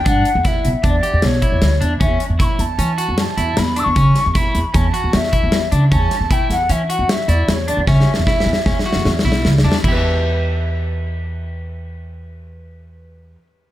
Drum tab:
CC |------------------------------|------------------------------|------------------------------|------------------------------|
HH |x--x--x--x--x--x--x--x--x--x--|x--x--x--x--x--x--x--x--x--x--|x--x--x--x--x--x--x--x--x--x--|x--x--x--x--x--x--x--x--x--x--|
SD |------o-----------o-----o-----|------o-----------o-----o-----|---o--o-----------o-----o-----|---o-----o--------o-----o-----|
BD |o-----o-----o--------o--------|o-----o-----------------------|o-----o-----o--------o--------|o-----o-----------------------|

CC |------------------------------|x-----------------------------|------------------------------|
HH |------------------------------|------------------------------|------------------------------|
SD |o-o-o-o-o-o-o-o-o-o-o-o-o-o-o-|------------------------------|------------------------------|
BD |o-----o-----o-----------------|o-----------------------------|------------------------------|